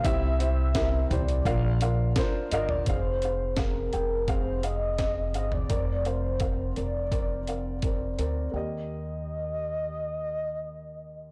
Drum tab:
HH |x-x-x-xxx-x-x-x-|x-x-x-x-x-x-x-x-|x-x-x-x-x-x-x-x-|----------------|
SD |----o-------o---|----o-------o---|----------------|----------------|
FT |------o--------o|---------------o|----------------|----------------|
BD |o---o---o---o---|o---o---o---o---|o---o---o---o---|----------------|